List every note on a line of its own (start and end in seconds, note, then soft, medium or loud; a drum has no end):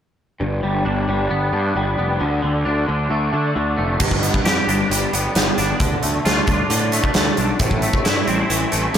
0.40 0.60 G1 medium
0.40 1.53 G2 medium
0.63 0.82 G1 medium
0.63 1.07 G3 medium
0.85 1.04 G1 medium
0.85 1.53 D4 medium
1.08 1.27 G1 medium
1.08 1.75 G3 medium
1.30 1.50 G1 medium
1.30 1.97 B3 medium
1.52 1.72 G2 medium
1.52 2.65 D4 medium
1.76 1.95 G1 medium
1.76 2.19 G3 medium
1.98 2.18 F1 medium
1.98 2.21 B3 medium
2.20 2.40 D2 medium
2.20 2.41 D3 medium
2.42 2.63 D2 medium
2.42 2.86 D3 medium
2.65 2.85 D2 medium
2.65 3.31 D4 medium
2.87 3.07 D2 medium
2.87 3.54 D3 medium
3.10 3.29 D2 medium
3.10 3.76 A3 medium
3.33 3.52 D3 medium
3.33 4.00 D4 medium
3.55 3.75 D2 medium
3.55 4.01 D3 medium
3.78 3.97 F1 medium
3.78 4.00 A3 medium
4.00 4.28 G1 medium
4.00 5.13 G2 medium
4.00 kick loud
4.00 crash medium
4.11 kick medium
4.22 5.12 B3 medium
4.22 closed hi-hat medium
4.34 kick medium
4.45 4.59 F2 medium
4.45 5.58 G4 medium
4.45 snare loud
4.45 closed hi-hat medium
4.67 4.81 G1 medium
4.67 5.57 D4 medium
4.67 closed hi-hat medium
4.90 5.04 G1 medium
4.90 5.34 G3 medium
4.90 closed hi-hat medium
5.13 5.27 G1 medium
5.13 5.81 B3 medium
5.13 closed hi-hat medium
5.35 5.49 G1 medium
5.35 5.80 G3 medium
5.35 snare loud
5.35 closed hi-hat medium
5.58 5.72 G1 medium
5.58 5.81 D4 medium
5.58 snare soft
5.58 closed hi-hat medium
5.80 5.94 D2 medium
5.80 6.69 D3 medium
5.80 kick loud
5.80 closed hi-hat medium
6.02 6.17 D2 medium
6.02 6.92 A3 medium
6.02 closed hi-hat medium
6.25 6.40 D2 medium
6.25 7.38 F4 medium
6.25 snare loud
6.25 closed hi-hat medium
6.47 6.62 D2 medium
6.47 7.37 D4 medium
6.47 kick medium
6.47 closed hi-hat medium
6.70 6.98 A2 medium
6.70 7.14 D3 medium
6.70 closed hi-hat medium
6.92 7.82 A3 medium
6.92 closed hi-hat medium
7.04 kick medium
7.14 7.29 D2 medium
7.14 7.60 D3 medium
7.14 snare loud
7.14 closed hi-hat medium
7.37 7.52 B1 medium
7.37 7.61 D4 medium
7.37 closed hi-hat medium
7.59 7.87 A1 medium
7.59 8.72 A2 medium
7.59 kick loud
7.59 closed hi-hat medium
7.71 kick medium
7.82 8.71 A3 medium
7.82 closed hi-hat medium
7.93 kick medium
8.04 8.20 G2 medium
8.04 8.98 E4 medium
8.04 snare loud
8.04 closed hi-hat medium
8.27 8.42 A1 medium
8.27 8.98 C4 medium
8.27 closed hi-hat medium
8.50 8.64 A1 medium
8.50 8.93 E3 medium
8.50 closed hi-hat medium
8.72 8.87 A1 medium
8.72 8.98 A3 medium
8.72 closed hi-hat medium
8.94 8.98 A1 medium
8.94 8.98 E3 medium
8.94 closed hi-hat medium